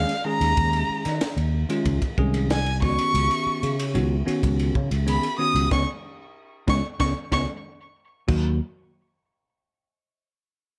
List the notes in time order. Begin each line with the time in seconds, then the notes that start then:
Already playing: D#3 G#3 C#4 G#4 F5
0.09 snare, ride
0.25 D#3 G#3 C#4 G#4 A#5
0.40 D#2, ride
0.57 D#2, kick, ride
0.73 ride
0.89 muted fretless electric bass stroke
1.05 D#3, snare, ride
1.21 snare, ride
1.36 D#2, ride
1.69 D#3 G#3 C#4 F4, ride
1.85 C#2, kick, ride
2.02 kick, ride
2.18 C2 D#3 G#3 C#4 G#4, kick
2.34 ride
2.50 G#5, snare, ride
2.66 ride
2.82 C#2 D#3 B3 C#4 F#4 C#6, kick, snare
2.99 ride
3.14 C#2, ride
3.31 ride
3.46 muted fretless electric bass stroke
3.63 C#3, ride
3.80 ride
3.94 C#2 D#3 B3 C#4 F#4, ride
4.26 D#3 B3 C#4 F#4, ride
4.43 C#2, kick, ride
4.59 ride
4.75 C#3, kick
4.91 C#2, ride
5.06 D#3 B3 C#4 G#4 B5, ride
5.23 ride
5.39 D#3 B3 C#4 F#4 D#6
5.54 C#2, ride
5.71 C#2 G#3 B3 C#4 C#6, kick, snare
6.68 C#2 G#3 B3 C#4 C#6, kick, snare
7.00 C#2 G#3 B3 C#4 C#6, kick, snare
7.32 C#2 G#3 B3 C#4 C#6, kick, snare
8.28 D#2 D#3 F#3 A#3 F#4, kick, crash